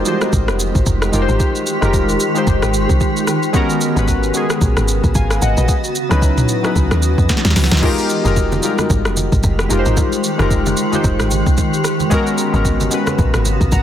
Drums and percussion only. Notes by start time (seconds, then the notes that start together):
0.06 shaker
0.21 cross-stick, shaker
0.33 kick, shaker
0.48 cross-stick, shaker
0.59 shaker
0.75 kick, shaker
0.86 kick, shaker
1.02 cross-stick, shaker
1.13 shaker
1.29 shaker
1.40 kick, shaker
1.55 shaker
1.67 shaker
1.82 cross-stick, shaker
1.93 kick, shaker
2.09 shaker
2.20 shaker
2.36 shaker
2.47 kick, shaker
2.62 cross-stick, shaker
2.74 shaker
2.89 kick, shaker
3.00 kick, shaker
3.17 shaker
3.27 cross-stick, shaker
3.43 shaker
3.54 kick, shaker
3.70 shaker
3.81 shaker
3.97 shaker
4.08 kick, shaker
4.23 shaker
4.34 shaker
4.50 cross-stick, shaker
4.61 kick, shaker
4.77 cross-stick, shaker
4.88 shaker
5.04 kick, shaker
5.15 kick, shaker
5.31 cross-stick, shaker
5.42 shaker
5.57 shaker
5.68 kick, shaker
5.84 shaker
5.95 shaker
6.11 cross-stick, shaker
6.22 kick, shaker
6.38 mid tom, shaker
6.49 shaker
6.64 cross-stick, shaker
6.76 kick, shaker
6.91 cross-stick, shaker
7.03 shaker
7.18 kick, shaker
7.29 kick, snare, shaker
7.37 snare
7.45 snare, shaker
7.50 snare
7.56 snare, open hi-hat, shaker
7.64 snare
7.71 snare, shaker
7.77 snare
7.83 kick, crash, low conga
7.98 shaker
8.09 shaker
8.25 high conga, shaker
8.36 kick, low conga, shaker
8.52 high conga, shaker
8.63 shaker
8.78 cross-stick, high conga, shaker
8.90 kick, low conga, shaker
9.05 cross-stick, shaker
9.17 high conga, shaker
9.32 kick, shaker
9.43 kick, high conga, shaker
9.59 cross-stick, shaker
9.70 shaker
9.86 high conga, shaker
9.97 kick, low conga, shaker
10.12 shaker
10.24 shaker
10.39 cross-stick, high conga, shaker
10.51 kick, low conga, shaker
10.66 high conga, shaker
10.77 shaker
10.93 high conga, shaker
11.04 kick, low conga, shaker
11.20 cross-stick, shaker
11.31 high conga, shaker
11.47 kick, shaker
11.57 kick, high conga, shaker
11.74 shaker
11.84 cross-stick, shaker
12.00 high conga, shaker
12.11 kick, low conga, shaker
12.27 shaker
12.38 shaker
12.54 high conga, shaker
12.65 kick, low conga, shaker
12.80 high conga, shaker
12.91 shaker
13.07 cross-stick, high conga, shaker
13.19 kick, low conga, shaker
13.34 cross-stick, shaker
13.45 high conga, shaker
13.61 kick, shaker
13.72 kick, high conga, shaker